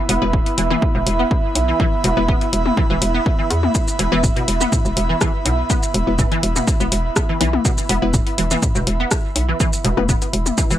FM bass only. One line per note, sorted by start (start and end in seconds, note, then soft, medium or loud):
0.09 0.19 E1 loud
0.22 0.40 E1 medium
0.58 0.76 E1 medium
0.95 1.04 E1 medium
1.06 1.25 E1 medium
1.55 1.74 B1 medium
2.04 2.14 E1 loud
2.17 2.35 E1 medium
2.53 2.71 E1 medium
2.90 2.99 E1 medium
3.02 3.20 E1 loud
3.50 3.69 E2 loud
3.99 4.09 E1 loud
4.12 4.30 E1 medium
4.48 4.66 E1 medium
4.85 4.94 E1 medium
4.97 5.15 E1 loud
5.45 5.64 B1 medium
5.94 6.04 E1 loud
6.07 6.25 E1 medium
6.43 6.62 E1 medium
6.80 6.89 E1 medium
6.92 7.10 E1 medium
7.41 7.59 B1 medium
7.89 7.99 E1 loud
8.02 8.20 E1 medium
8.38 8.57 E1 medium
8.75 8.84 E1 medium
8.87 9.06 E1 medium
9.36 9.54 B1 medium
9.85 9.94 E1 loud
9.97 10.15 E1 medium
10.33 10.52 E1 medium
10.71 10.79 E1 medium